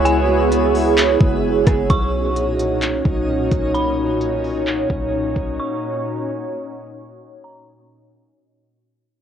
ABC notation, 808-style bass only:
X:1
M:4/4
L:1/8
Q:1/4=130
K:B
V:1 name="808-style bass" clef=bass
C,,4- C,, F,,,2 F,,, | B,,,4- B,,, B,,,2 B,,,- | B,,,4- B,,, B,,,2 B,,, | z8 |
z8 |]